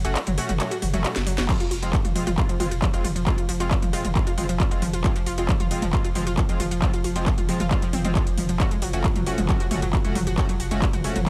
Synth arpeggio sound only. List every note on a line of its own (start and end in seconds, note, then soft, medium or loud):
0.05 0.10 F#4 loud
0.15 0.21 F#4 medium
0.27 0.32 F#3 loud
0.38 0.43 F#4 loud
0.49 0.54 F#4 medium
0.60 0.66 F#3 loud
0.71 0.77 F#4 loud
0.82 0.88 F#4 medium
0.93 0.99 F#3 loud
1.04 1.10 F#4 loud
1.16 1.21 F#4 medium
1.27 1.32 F#3 loud
1.38 1.43 F#4 loud
1.49 1.54 F3 loud
1.60 1.66 F4 loud
1.71 1.77 F4 medium
1.82 1.88 F3 loud
1.93 1.99 F4 loud
2.05 2.10 F4 medium
2.15 2.21 F3 loud
2.27 2.32 F4 loud
2.38 2.43 F4 medium
2.49 2.54 F3 loud
2.60 2.65 F4 loud
2.71 2.77 F4 medium
2.82 2.88 F3 loud
2.93 2.99 F4 loud
3.04 3.10 F4 medium
3.16 3.21 F3 loud
3.26 3.32 F4 loud
3.38 3.43 F4 medium
3.49 3.54 F3 loud
3.60 3.65 F4 loud
3.71 3.77 F4 medium
3.82 3.88 F3 medium
3.93 3.99 F4 loud
4.05 4.10 F4 medium
4.15 4.21 F3 loud
4.27 4.32 F4 loud
4.38 4.43 F4 medium
4.49 4.54 F3 loud
4.60 4.65 F4 loud
4.71 4.77 F4 medium
4.82 4.88 F3 loud
4.93 4.99 F4 loud
5.04 5.10 F4 medium
5.16 5.21 F3 loud
5.26 5.32 F4 loud
5.38 5.43 F4 medium
5.49 5.54 F3 loud
5.60 5.65 F4 loud
5.71 5.77 F4 medium
5.82 5.88 F3 loud
5.93 5.99 F4 loud
6.05 6.10 F4 medium
6.15 6.21 F3 loud
6.27 6.32 F4 loud
6.38 6.43 F4 medium
6.49 6.54 F3 loud
6.60 6.66 F4 loud
6.71 6.77 F4 medium
6.82 6.88 F3 loud
6.94 6.99 F4 loud
7.04 7.10 F4 medium
7.16 7.21 F3 loud
7.27 7.32 F4 loud
7.38 7.43 F4 medium
7.49 7.54 F3 loud
7.60 7.66 F4 loud
7.71 7.77 F4 medium
7.82 7.88 F3 loud
7.93 8.02 C4 loud
8.05 8.10 C4 medium
8.16 8.21 G#3 medium
8.38 8.43 F3 medium
8.49 8.52 F3 medium
8.60 8.66 F#4 loud
8.71 8.75 G#3 medium
8.82 8.88 F#3 loud
8.94 8.99 F#4 loud
9.04 9.08 G#3 medium
9.16 9.21 F#3 loud
9.27 9.32 F#4 loud
9.38 9.41 G#3 medium
9.49 9.54 F#3 loud
9.60 9.66 F#4 loud
9.71 9.74 G#3 medium
9.82 9.88 F#3 loud
9.93 9.99 F#4 loud
10.05 10.08 G#3 medium
10.15 10.21 F#3 loud
10.27 10.32 F#4 loud
10.38 10.41 G#3 medium
10.49 10.54 F#3 loud
10.60 10.65 F#4 loud
10.71 10.74 G#3 medium
10.82 10.88 F#3 loud
10.93 10.99 F#4 loud
11.04 11.08 G#3 medium
11.16 11.21 F#3 loud